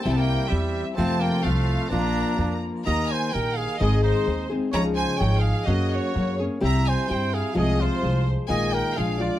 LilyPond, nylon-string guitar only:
\new Staff \with { instrumentName = "Nylon-string guitar" } { \time 2/4 \key bes \major \tempo 4 = 128 <c g c' e' g'>4 <g c' e' g'>4 | <f, c f a c' f'>4 <f a c' f'>4 | <bes, f bes d' f'>4 <f bes d' f'>4 | \key ees \major <ees bes ees' g'>4 <ees bes ees' g'>4 |
<aes, ees aes c' ees' aes'>4 <aes c' ees' aes'>8 <aes c' ees' aes'>8 | <des f aes ees' aes'>4 <f aes ees' aes'>4 | <ges bes des' aes'>4 <ges bes des' aes'>8 <bes des' aes'>8 | <c g c' e' g'>4 <g c' e' g'>4 |
<c f aes f' aes'>4 <f aes f' aes'>4 | <bes, ees aes ees' f'>4 <f aes d' f'>8 <f aes d' f'>8 | }